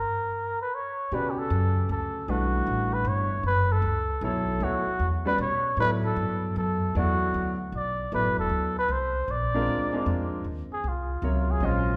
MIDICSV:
0, 0, Header, 1, 5, 480
1, 0, Start_track
1, 0, Tempo, 388601
1, 1381, Time_signature, 3, 2, 24, 8
1, 14779, End_track
2, 0, Start_track
2, 0, Title_t, "Muted trumpet"
2, 0, Program_c, 0, 59
2, 0, Note_on_c, 0, 70, 91
2, 697, Note_off_c, 0, 70, 0
2, 754, Note_on_c, 0, 71, 83
2, 921, Note_on_c, 0, 73, 80
2, 940, Note_off_c, 0, 71, 0
2, 1410, Note_on_c, 0, 71, 94
2, 1429, Note_off_c, 0, 73, 0
2, 1611, Note_on_c, 0, 67, 62
2, 1629, Note_off_c, 0, 71, 0
2, 1712, Note_on_c, 0, 69, 93
2, 1731, Note_off_c, 0, 67, 0
2, 2351, Note_off_c, 0, 69, 0
2, 2370, Note_on_c, 0, 69, 83
2, 2841, Note_on_c, 0, 66, 100
2, 2860, Note_off_c, 0, 69, 0
2, 3631, Note_on_c, 0, 71, 92
2, 3650, Note_off_c, 0, 66, 0
2, 3805, Note_on_c, 0, 73, 92
2, 3824, Note_off_c, 0, 71, 0
2, 4272, Note_off_c, 0, 73, 0
2, 4281, Note_on_c, 0, 71, 96
2, 4592, Note_on_c, 0, 69, 104
2, 4610, Note_off_c, 0, 71, 0
2, 5231, Note_off_c, 0, 69, 0
2, 5244, Note_on_c, 0, 69, 85
2, 5725, Note_on_c, 0, 66, 95
2, 5744, Note_off_c, 0, 69, 0
2, 6296, Note_off_c, 0, 66, 0
2, 6506, Note_on_c, 0, 71, 98
2, 6658, Note_off_c, 0, 71, 0
2, 6682, Note_on_c, 0, 73, 89
2, 7120, Note_off_c, 0, 73, 0
2, 7165, Note_on_c, 0, 71, 103
2, 7300, Note_off_c, 0, 71, 0
2, 7476, Note_on_c, 0, 69, 94
2, 8072, Note_off_c, 0, 69, 0
2, 8130, Note_on_c, 0, 69, 91
2, 8566, Note_off_c, 0, 69, 0
2, 8616, Note_on_c, 0, 66, 99
2, 9344, Note_off_c, 0, 66, 0
2, 9586, Note_on_c, 0, 74, 97
2, 10016, Note_off_c, 0, 74, 0
2, 10057, Note_on_c, 0, 71, 104
2, 10333, Note_off_c, 0, 71, 0
2, 10368, Note_on_c, 0, 69, 104
2, 10802, Note_off_c, 0, 69, 0
2, 10850, Note_on_c, 0, 71, 104
2, 11018, Note_on_c, 0, 72, 93
2, 11036, Note_off_c, 0, 71, 0
2, 11497, Note_on_c, 0, 74, 103
2, 11516, Note_off_c, 0, 72, 0
2, 12754, Note_off_c, 0, 74, 0
2, 13249, Note_on_c, 0, 68, 83
2, 13440, Note_on_c, 0, 65, 79
2, 13459, Note_off_c, 0, 68, 0
2, 14216, Note_on_c, 0, 68, 106
2, 14234, Note_off_c, 0, 65, 0
2, 14392, Note_on_c, 0, 65, 89
2, 14411, Note_off_c, 0, 68, 0
2, 14779, Note_off_c, 0, 65, 0
2, 14779, End_track
3, 0, Start_track
3, 0, Title_t, "Grand piano"
3, 0, Program_c, 1, 0
3, 1389, Note_on_c, 1, 67, 63
3, 1394, Note_on_c, 1, 49, 63
3, 1400, Note_on_c, 1, 66, 58
3, 1401, Note_on_c, 1, 71, 57
3, 1405, Note_on_c, 1, 74, 65
3, 2721, Note_off_c, 1, 67, 0
3, 2723, Note_off_c, 1, 49, 0
3, 2727, Note_off_c, 1, 66, 0
3, 2727, Note_off_c, 1, 71, 0
3, 2729, Note_off_c, 1, 74, 0
3, 2821, Note_on_c, 1, 52, 55
3, 2826, Note_on_c, 1, 57, 51
3, 2830, Note_on_c, 1, 62, 60
3, 2835, Note_on_c, 1, 55, 58
3, 2836, Note_on_c, 1, 71, 68
3, 4157, Note_off_c, 1, 52, 0
3, 4160, Note_off_c, 1, 57, 0
3, 4162, Note_off_c, 1, 62, 0
3, 4165, Note_off_c, 1, 55, 0
3, 4165, Note_off_c, 1, 71, 0
3, 5216, Note_on_c, 1, 54, 63
3, 5226, Note_on_c, 1, 64, 53
3, 5227, Note_on_c, 1, 59, 47
3, 5233, Note_on_c, 1, 69, 52
3, 5241, Note_on_c, 1, 73, 72
3, 5684, Note_off_c, 1, 54, 0
3, 5687, Note_off_c, 1, 59, 0
3, 5694, Note_off_c, 1, 64, 0
3, 5697, Note_off_c, 1, 69, 0
3, 5701, Note_off_c, 1, 73, 0
3, 5702, Note_on_c, 1, 54, 60
3, 5706, Note_on_c, 1, 59, 53
3, 5712, Note_on_c, 1, 64, 55
3, 5715, Note_on_c, 1, 69, 61
3, 5719, Note_on_c, 1, 73, 69
3, 5981, Note_off_c, 1, 54, 0
3, 5982, Note_off_c, 1, 59, 0
3, 5986, Note_off_c, 1, 64, 0
3, 5987, Note_off_c, 1, 69, 0
3, 5989, Note_off_c, 1, 73, 0
3, 6487, Note_on_c, 1, 55, 72
3, 6491, Note_on_c, 1, 61, 65
3, 6500, Note_on_c, 1, 66, 59
3, 6504, Note_on_c, 1, 71, 59
3, 6508, Note_on_c, 1, 74, 82
3, 6643, Note_off_c, 1, 55, 0
3, 6645, Note_off_c, 1, 61, 0
3, 6649, Note_off_c, 1, 66, 0
3, 6652, Note_off_c, 1, 71, 0
3, 6653, Note_off_c, 1, 74, 0
3, 7152, Note_on_c, 1, 54, 61
3, 7160, Note_on_c, 1, 59, 53
3, 7162, Note_on_c, 1, 64, 56
3, 7168, Note_on_c, 1, 69, 61
3, 7169, Note_on_c, 1, 74, 70
3, 8489, Note_off_c, 1, 54, 0
3, 8493, Note_off_c, 1, 59, 0
3, 8494, Note_off_c, 1, 64, 0
3, 8497, Note_off_c, 1, 69, 0
3, 8497, Note_off_c, 1, 74, 0
3, 8585, Note_on_c, 1, 54, 68
3, 8589, Note_on_c, 1, 59, 54
3, 8589, Note_on_c, 1, 64, 51
3, 8595, Note_on_c, 1, 69, 56
3, 8600, Note_on_c, 1, 74, 74
3, 9316, Note_off_c, 1, 54, 0
3, 9317, Note_off_c, 1, 64, 0
3, 9318, Note_off_c, 1, 59, 0
3, 9321, Note_off_c, 1, 69, 0
3, 9323, Note_off_c, 1, 74, 0
3, 10035, Note_on_c, 1, 54, 49
3, 10035, Note_on_c, 1, 59, 52
3, 10043, Note_on_c, 1, 64, 47
3, 10047, Note_on_c, 1, 69, 49
3, 10054, Note_on_c, 1, 74, 58
3, 10761, Note_off_c, 1, 54, 0
3, 10761, Note_off_c, 1, 59, 0
3, 10765, Note_off_c, 1, 64, 0
3, 10767, Note_off_c, 1, 69, 0
3, 10771, Note_off_c, 1, 74, 0
3, 11788, Note_on_c, 1, 56, 69
3, 11790, Note_on_c, 1, 60, 69
3, 11790, Note_on_c, 1, 62, 71
3, 11801, Note_on_c, 1, 70, 80
3, 11803, Note_on_c, 1, 65, 68
3, 12234, Note_off_c, 1, 56, 0
3, 12234, Note_off_c, 1, 60, 0
3, 12235, Note_off_c, 1, 62, 0
3, 12240, Note_off_c, 1, 70, 0
3, 12241, Note_off_c, 1, 65, 0
3, 12255, Note_on_c, 1, 56, 68
3, 12265, Note_on_c, 1, 60, 67
3, 12268, Note_on_c, 1, 62, 63
3, 12275, Note_on_c, 1, 65, 57
3, 12281, Note_on_c, 1, 70, 70
3, 12874, Note_off_c, 1, 56, 0
3, 12878, Note_off_c, 1, 60, 0
3, 12880, Note_off_c, 1, 62, 0
3, 12883, Note_off_c, 1, 65, 0
3, 12886, Note_off_c, 1, 70, 0
3, 13873, Note_on_c, 1, 54, 56
3, 13877, Note_on_c, 1, 48, 50
3, 13880, Note_on_c, 1, 70, 56
3, 13881, Note_on_c, 1, 65, 51
3, 13889, Note_on_c, 1, 73, 66
3, 14341, Note_off_c, 1, 54, 0
3, 14351, Note_on_c, 1, 56, 60
3, 14358, Note_on_c, 1, 61, 61
3, 14359, Note_on_c, 1, 72, 55
3, 14360, Note_on_c, 1, 54, 62
3, 14364, Note_on_c, 1, 75, 70
3, 14598, Note_off_c, 1, 48, 0
3, 14600, Note_off_c, 1, 65, 0
3, 14600, Note_off_c, 1, 70, 0
3, 14605, Note_off_c, 1, 73, 0
3, 14779, Note_off_c, 1, 54, 0
3, 14779, Note_off_c, 1, 56, 0
3, 14779, Note_off_c, 1, 61, 0
3, 14779, Note_off_c, 1, 72, 0
3, 14779, Note_off_c, 1, 75, 0
3, 14779, End_track
4, 0, Start_track
4, 0, Title_t, "Upright bass"
4, 0, Program_c, 2, 32
4, 1379, Note_on_c, 2, 47, 81
4, 1845, Note_off_c, 2, 47, 0
4, 1856, Note_on_c, 2, 42, 91
4, 2323, Note_off_c, 2, 42, 0
4, 2337, Note_on_c, 2, 38, 90
4, 2803, Note_off_c, 2, 38, 0
4, 2818, Note_on_c, 2, 35, 84
4, 3284, Note_off_c, 2, 35, 0
4, 3293, Note_on_c, 2, 33, 90
4, 3754, Note_off_c, 2, 33, 0
4, 3762, Note_on_c, 2, 31, 90
4, 4236, Note_off_c, 2, 31, 0
4, 4241, Note_on_c, 2, 30, 83
4, 4710, Note_off_c, 2, 30, 0
4, 4717, Note_on_c, 2, 37, 87
4, 5194, Note_off_c, 2, 37, 0
4, 5203, Note_on_c, 2, 35, 97
4, 5678, Note_off_c, 2, 35, 0
4, 5685, Note_on_c, 2, 38, 89
4, 5981, Note_off_c, 2, 38, 0
4, 6169, Note_on_c, 2, 40, 91
4, 6641, Note_off_c, 2, 40, 0
4, 6648, Note_on_c, 2, 47, 98
4, 7117, Note_off_c, 2, 47, 0
4, 7125, Note_on_c, 2, 45, 94
4, 7601, Note_off_c, 2, 45, 0
4, 7613, Note_on_c, 2, 43, 93
4, 8085, Note_off_c, 2, 43, 0
4, 8101, Note_on_c, 2, 42, 94
4, 8570, Note_off_c, 2, 42, 0
4, 8585, Note_on_c, 2, 40, 92
4, 9053, Note_off_c, 2, 40, 0
4, 9067, Note_on_c, 2, 38, 87
4, 9534, Note_off_c, 2, 38, 0
4, 9539, Note_on_c, 2, 35, 84
4, 10011, Note_off_c, 2, 35, 0
4, 10028, Note_on_c, 2, 33, 88
4, 10186, Note_on_c, 2, 31, 67
4, 10204, Note_off_c, 2, 33, 0
4, 10332, Note_off_c, 2, 31, 0
4, 10339, Note_on_c, 2, 28, 61
4, 10484, Note_off_c, 2, 28, 0
4, 10491, Note_on_c, 2, 38, 80
4, 10967, Note_off_c, 2, 38, 0
4, 10973, Note_on_c, 2, 36, 87
4, 11448, Note_off_c, 2, 36, 0
4, 11460, Note_on_c, 2, 34, 89
4, 11931, Note_off_c, 2, 34, 0
4, 11938, Note_on_c, 2, 38, 78
4, 12410, Note_off_c, 2, 38, 0
4, 12426, Note_on_c, 2, 41, 92
4, 12894, Note_off_c, 2, 41, 0
4, 12900, Note_on_c, 2, 39, 79
4, 13193, Note_off_c, 2, 39, 0
4, 13387, Note_on_c, 2, 36, 82
4, 13853, Note_off_c, 2, 36, 0
4, 13859, Note_on_c, 2, 37, 94
4, 14324, Note_off_c, 2, 37, 0
4, 14331, Note_on_c, 2, 34, 83
4, 14779, Note_off_c, 2, 34, 0
4, 14779, End_track
5, 0, Start_track
5, 0, Title_t, "Muted upright bass strokes"
5, 5999, Note_on_c, 9, 29, 34
5, 6122, Note_off_c, 9, 29, 0
5, 13216, Note_on_c, 9, 29, 31
5, 13339, Note_off_c, 9, 29, 0
5, 14779, End_track
0, 0, End_of_file